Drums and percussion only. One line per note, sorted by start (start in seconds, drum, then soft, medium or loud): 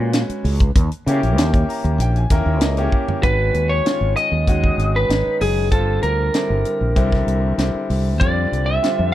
0.13 snare loud
0.13 closed hi-hat medium
0.30 closed hi-hat soft
0.45 open hi-hat medium
0.60 kick medium
0.60 closed hi-hat soft
0.76 kick loud
0.76 closed hi-hat medium
0.92 closed hi-hat soft
1.07 closed hi-hat medium
1.23 closed hi-hat soft
1.38 snare loud
1.38 closed hi-hat medium
1.54 kick medium
1.54 closed hi-hat soft
1.70 open hi-hat medium
1.85 closed hi-hat soft
2.00 closed hi-hat medium
2.16 closed hi-hat soft
2.30 kick medium
2.30 snare soft
2.30 closed hi-hat medium
2.61 snare loud
2.61 closed hi-hat medium
2.77 closed hi-hat soft
2.92 kick medium
3.08 floor tom medium
3.23 kick loud
3.23 closed hi-hat medium
3.54 closed hi-hat soft
3.86 snare medium
3.86 closed hi-hat medium
4.17 closed hi-hat soft
4.48 kick medium
4.48 closed hi-hat medium
4.64 kick medium
4.79 closed hi-hat medium
5.10 snare loud
5.10 closed hi-hat medium
5.41 open hi-hat medium
5.72 kick loud
5.72 closed hi-hat medium
6.03 closed hi-hat soft
6.34 snare medium
6.34 closed hi-hat medium
6.65 closed hi-hat soft
6.96 kick medium
6.96 closed hi-hat medium
7.12 kick medium
7.12 snare soft
7.28 closed hi-hat soft
7.58 snare medium
7.58 closed hi-hat medium
7.90 open hi-hat medium
8.21 kick loud
8.21 closed hi-hat medium
8.53 closed hi-hat soft
8.84 snare medium
8.84 closed hi-hat medium